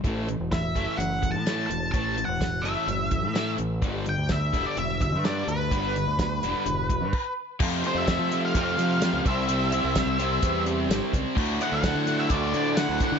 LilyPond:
<<
  \new Staff \with { instrumentName = "Lead electric guitar" } { \time 4/4 \key a \dorian \tempo 4 = 127 r4 e''4 fis''8. a''8. a''8 | a''8. fis''8. e''2 r8 | r8 g''8 e''8. d''16 e''8 e''8 d''8 b'8~ | b'2.~ b'8 r8 |
r8 c''16 e''4 f''16 f''4. e''8~ | e''2~ e''8 r4. | r8 fis''16 fis''4 e''16 d''4 fis''4 | }
  \new Staff \with { instrumentName = "Overdriven electric guitar" } { \time 4/4 \key a \dorian r1 | r1 | r1 | r1 |
<f, c f a c' f'>2 <f, c f a c' f'>4. <c g c' e' g' c''>8~ | <c g c' e' g' c''>4. <c g c' e' g' c''>2 r8 | <d, a, d a fis'>2 <d, a, d a fis'>2 | }
  \new Staff \with { instrumentName = "Overdriven electric guitar" } { \clef bass \time 4/4 \key a \dorian <a, e a>8 <a, e>8 <a, e>8 <a, e a>8 <a, e>8 <a, e>8 <a, e a>8 <a, e>8 | <a, e a>8 <a, e>8 <a, e>8 <a, e a>8 <a, e>8 <a, e>8 <a, e a>8 <a, e>8 | <g, d g>8 <g, d>8 <g, d>8 <g, d g>8 <g, d>8 <g, d>8 <g, d g>8 <g, d>8 | <g, d g>8 <g, d>8 <g, d>8 <g, d g>8 <g, d>8 <g, d>8 r4 |
<f, c f>8 <f, c f>8 <f, c f>8 <f, c f>8 <f, c f>8 <f, c f>8 <f, c f>8 <c g c'>8 | <c g c'>8 <c g c'>8 <c g c'>8 <c g c'>8 <c g c'>8 <c g c'>8 <c g c'>8 <c g c'>8 | <d, a, d>8 <d, a, d>8 <d, a, d>8 <d, a, d>8 <d, a, d>8 <d, a, d>8 <d, a, d>8 <d, a, d>8 | }
  \new Staff \with { instrumentName = "Fingered electric bass" } { \clef bass \time 4/4 \key a \dorian a,,8. e,,8. fis,,16 r16 fis,,8. a,8. e,,8 | a,,8. e,,8. fis,,16 r16 fis,,8. a,8. a,,8 | g,,8. d,8. e,,16 r16 e,,8. g,8. d,8 | g,,8. d,8. e,,16 r16 e,,8. g,16 r4 |
f,8 r16 f,8 f8. f,8 f8. cis,16 c,8~ | c,8. c,8 c,8. e,4 g,,16 r16 cis,16 r16 | d,8 r16 d,8 d8. d,8 d8. d,16 r16 d16 | }
  \new DrumStaff \with { instrumentName = "Drums" } \drummode { \time 4/4 <hh bd>8 hh8 <hh bd sn tamb>8 <hh bd>8 hh8 <hh bd>8 <hh sn tamb>8 hh8 | <hh bd>8 hh8 <hh bd sn tamb>8 hh8 hh8 <hh bd>8 <hh sn tamb>8 hh8 | <hh bd>8 hh8 <hh bd sn tamb>8 <hh bd>8 hh8 <hh bd>8 <hh sn tamb>8 hh8 | <hh bd>8 hh8 <hh bd sn tamb>8 hh8 hh8 <hh bd>8 <cymc bd>4 |
<cymc bd>8 hh8 <hh bd sn tamb>8 <hh sn>8 <hh bd>8 hh8 <hh sn tamb>8 <hh bd>8 | hh8 hh8 <hh bd sn tamb>8 hh8 <hh bd>8 hh8 <hh sn tamb>8 <hh bd>8 | <cymc bd>8 hh8 <hh bd sn tamb>8 <hh sn>8 <hh bd>8 hh8 <hh sn tamb>8 <hh bd>8 | }
>>